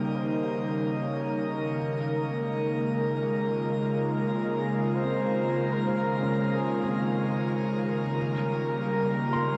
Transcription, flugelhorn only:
0, 0, Header, 1, 2, 480
1, 0, Start_track
1, 0, Tempo, 800000
1, 1059, Time_signature, 4, 2, 24, 8
1, 5742, End_track
2, 0, Start_track
2, 0, Title_t, "Flugelhorn"
2, 0, Program_c, 0, 56
2, 0, Note_on_c, 0, 70, 81
2, 93, Note_on_c, 0, 72, 89
2, 102, Note_off_c, 0, 70, 0
2, 414, Note_off_c, 0, 72, 0
2, 582, Note_on_c, 0, 73, 81
2, 916, Note_off_c, 0, 73, 0
2, 2738, Note_on_c, 0, 68, 87
2, 2967, Note_on_c, 0, 72, 113
2, 2976, Note_off_c, 0, 68, 0
2, 3438, Note_on_c, 0, 70, 93
2, 3447, Note_off_c, 0, 72, 0
2, 3929, Note_on_c, 0, 68, 77
2, 3938, Note_off_c, 0, 70, 0
2, 4654, Note_off_c, 0, 68, 0
2, 4896, Note_on_c, 0, 70, 98
2, 5742, Note_off_c, 0, 70, 0
2, 5742, End_track
0, 0, End_of_file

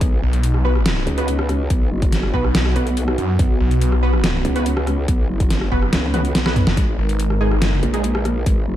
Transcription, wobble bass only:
0, 0, Header, 1, 2, 480
1, 0, Start_track
1, 0, Tempo, 422535
1, 14, Time_signature, 4, 2, 24, 8
1, 9957, End_track
2, 0, Start_track
2, 0, Title_t, "Wobble bass"
2, 0, Program_c, 0, 39
2, 14, Note_on_c, 0, 35, 103
2, 235, Note_off_c, 0, 35, 0
2, 1213, Note_on_c, 0, 37, 92
2, 1915, Note_off_c, 0, 37, 0
2, 1934, Note_on_c, 0, 35, 98
2, 2155, Note_off_c, 0, 35, 0
2, 2174, Note_on_c, 0, 30, 101
2, 2635, Note_off_c, 0, 30, 0
2, 3133, Note_on_c, 0, 35, 96
2, 3595, Note_off_c, 0, 35, 0
2, 3853, Note_on_c, 0, 35, 97
2, 4075, Note_off_c, 0, 35, 0
2, 5052, Note_on_c, 0, 37, 95
2, 5754, Note_off_c, 0, 37, 0
2, 5773, Note_on_c, 0, 35, 101
2, 5994, Note_off_c, 0, 35, 0
2, 6012, Note_on_c, 0, 30, 97
2, 6474, Note_off_c, 0, 30, 0
2, 6733, Note_on_c, 0, 37, 97
2, 7194, Note_off_c, 0, 37, 0
2, 7213, Note_on_c, 0, 35, 99
2, 7556, Note_off_c, 0, 35, 0
2, 7693, Note_on_c, 0, 32, 98
2, 7915, Note_off_c, 0, 32, 0
2, 8893, Note_on_c, 0, 34, 96
2, 9594, Note_off_c, 0, 34, 0
2, 9614, Note_on_c, 0, 32, 102
2, 9835, Note_off_c, 0, 32, 0
2, 9853, Note_on_c, 0, 30, 100
2, 9957, Note_off_c, 0, 30, 0
2, 9957, End_track
0, 0, End_of_file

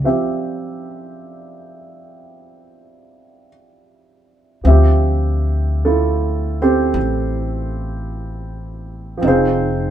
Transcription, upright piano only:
0, 0, Header, 1, 2, 480
1, 0, Start_track
1, 0, Key_signature, -1, "minor"
1, 0, Tempo, 1149425
1, 11, Time_signature, 4, 2, 24, 8
1, 4136, End_track
2, 0, Start_track
2, 0, Title_t, "Upright piano"
2, 0, Program_c, 0, 0
2, 0, Control_c, 0, 64, 127
2, 0, Note_on_c, 0, 74, 56
2, 18, Note_on_c, 0, 53, 43
2, 21, Note_on_c, 0, 60, 38
2, 22, Note_on_c, 0, 76, 42
2, 25, Note_on_c, 0, 67, 43
2, 1446, Note_off_c, 0, 74, 0
2, 1930, Note_off_c, 0, 53, 0
2, 1933, Note_off_c, 0, 60, 0
2, 1936, Note_on_c, 0, 53, 48
2, 1940, Note_on_c, 0, 60, 42
2, 1943, Note_off_c, 0, 76, 0
2, 1948, Control_c, 0, 64, 0
2, 1949, Note_off_c, 0, 67, 0
2, 1950, Note_on_c, 0, 76, 47
2, 1956, Note_on_c, 0, 67, 58
2, 2008, Control_c, 0, 64, 127
2, 2443, Note_on_c, 0, 69, 57
2, 2445, Note_on_c, 0, 57, 48
2, 2446, Note_on_c, 0, 64, 49
2, 2447, Note_on_c, 0, 65, 45
2, 2749, Note_off_c, 0, 69, 0
2, 2750, Note_off_c, 0, 57, 0
2, 2750, Note_off_c, 0, 64, 0
2, 2751, Note_off_c, 0, 65, 0
2, 2759, Note_off_c, 0, 67, 0
2, 2760, Note_off_c, 0, 60, 0
2, 2764, Note_on_c, 0, 72, 63
2, 2766, Note_on_c, 0, 60, 57
2, 2766, Note_on_c, 0, 67, 54
2, 2767, Note_on_c, 0, 69, 53
2, 2905, Note_off_c, 0, 72, 0
2, 2906, Note_off_c, 0, 60, 0
2, 2906, Note_off_c, 0, 67, 0
2, 2907, Note_off_c, 0, 69, 0
2, 3825, Note_off_c, 0, 53, 0
2, 3831, Note_on_c, 0, 53, 54
2, 3847, Note_on_c, 0, 60, 51
2, 3858, Note_off_c, 0, 76, 0
2, 3860, Control_c, 0, 64, 0
2, 3861, Note_on_c, 0, 63, 51
2, 3867, Note_off_c, 0, 60, 0
2, 3873, Note_on_c, 0, 72, 70
2, 3874, Note_on_c, 0, 60, 59
2, 3874, Note_on_c, 0, 68, 57
2, 3877, Note_on_c, 0, 65, 53
2, 3938, Control_c, 0, 64, 127
2, 4136, Note_off_c, 0, 53, 0
2, 4136, Note_off_c, 0, 60, 0
2, 4136, Note_off_c, 0, 63, 0
2, 4136, Note_off_c, 0, 65, 0
2, 4136, Note_off_c, 0, 68, 0
2, 4136, Note_off_c, 0, 72, 0
2, 4136, End_track
0, 0, End_of_file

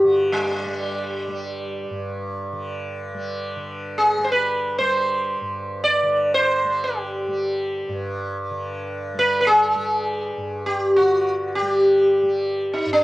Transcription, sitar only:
0, 0, Header, 1, 2, 480
1, 0, Start_track
1, 0, Tempo, 500000
1, 12516, End_track
2, 0, Start_track
2, 0, Title_t, "Sitar"
2, 0, Program_c, 0, 104
2, 0, Note_on_c, 0, 67, 70
2, 40, Note_off_c, 0, 67, 0
2, 40, Note_on_c, 0, 66, 70
2, 311, Note_on_c, 0, 55, 66
2, 323, Note_off_c, 0, 66, 0
2, 1912, Note_off_c, 0, 55, 0
2, 3817, Note_on_c, 0, 68, 72
2, 4073, Note_on_c, 0, 72, 56
2, 4090, Note_off_c, 0, 68, 0
2, 4140, Note_off_c, 0, 72, 0
2, 4144, Note_on_c, 0, 71, 74
2, 4589, Note_off_c, 0, 71, 0
2, 4593, Note_on_c, 0, 72, 74
2, 5599, Note_off_c, 0, 72, 0
2, 5603, Note_on_c, 0, 74, 84
2, 6062, Note_off_c, 0, 74, 0
2, 6090, Note_on_c, 0, 72, 81
2, 6566, Note_on_c, 0, 67, 64
2, 6588, Note_off_c, 0, 72, 0
2, 7639, Note_off_c, 0, 67, 0
2, 8820, Note_on_c, 0, 71, 99
2, 9018, Note_off_c, 0, 71, 0
2, 9029, Note_on_c, 0, 71, 60
2, 9088, Note_on_c, 0, 68, 93
2, 9092, Note_off_c, 0, 71, 0
2, 10231, Note_off_c, 0, 68, 0
2, 10234, Note_on_c, 0, 67, 71
2, 10521, Note_off_c, 0, 67, 0
2, 10525, Note_on_c, 0, 66, 78
2, 11086, Note_off_c, 0, 66, 0
2, 11090, Note_on_c, 0, 67, 78
2, 12225, Note_on_c, 0, 63, 69
2, 12260, Note_off_c, 0, 67, 0
2, 12407, Note_off_c, 0, 63, 0
2, 12411, Note_on_c, 0, 62, 65
2, 12516, Note_off_c, 0, 62, 0
2, 12516, End_track
0, 0, End_of_file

